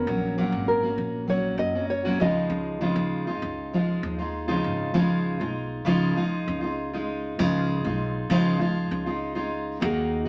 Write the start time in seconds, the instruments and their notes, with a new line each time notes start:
Already playing: nylon-string guitar A#4
0.07 upright bass A#1, steel-string acoustic guitar F#3 A#3 C#4 F#4
0.38 steel-string acoustic guitar A#2 F#3 A#3 C#4 F#4
0.52 upright bass G#1
0.68 nylon-string guitar A#4
0.83 steel-string acoustic guitar A#3 C#4 F#4
0.98 upright bass A#1
1.28 steel-string acoustic guitar F#3 A#3 C#4 F#4, nylon-string guitar C#5
1.58 upright bass F#1, nylon-string guitar D#5
1.75 steel-string acoustic guitar A#3 C#4 F#4
1.90 nylon-string guitar C#5
2.05 steel-string acoustic guitar A#2 F#3 A#3 C#4 F#4
2.20 upright bass C#2, steel-string acoustic guitar C#3 F3 G#3 D#4 F4, nylon-string guitar D#5
2.50 upright bass C#2
2.81 steel-string acoustic guitar C#3 F3 G#3 D#4 F4
2.96 upright bass D#2
3.27 steel-string acoustic guitar G#3 D#4 F4
3.42 upright bass C#2
3.73 steel-string acoustic guitar F3 G#3 D#4 F4
4.03 upright bass D#2
4.19 steel-string acoustic guitar G#3 D#4 F4
4.48 steel-string acoustic guitar C#3 F3 G#3 D#4 F4
4.64 upright bass G#1
4.94 upright bass C#2, steel-string acoustic guitar C#3 F3 G#3 D#4 F4
5.40 upright bass B1, steel-string acoustic guitar G#3 D#4 F4
5.85 upright bass C#2, steel-string acoustic guitar C#3 F3 G#3 D#4 F4
6.16 steel-string acoustic guitar F3 G#3 D#4 F4
6.48 upright bass C#2
6.61 steel-string acoustic guitar G#3 D#4 F4
6.93 steel-string acoustic guitar G#3 D#4 F4
7.39 upright bass C#2, steel-string acoustic guitar C#3 F3 G#3 D#4 F4
7.85 upright bass B1, steel-string acoustic guitar G#3 D#4 F4
8.30 upright bass C#2, steel-string acoustic guitar C#3 F3 G#3 D#4 F4
8.59 steel-string acoustic guitar F3 G#3 D#4 F4
8.91 upright bass C#2
9.06 steel-string acoustic guitar G#3 D#4 F4
9.35 steel-string acoustic guitar G#3 D#4 F4
9.80 upright bass D#2, steel-string acoustic guitar D#3 A#3 D#4 F#4
9.86 nylon-string guitar G#4
10.25 steel-string acoustic guitar F#4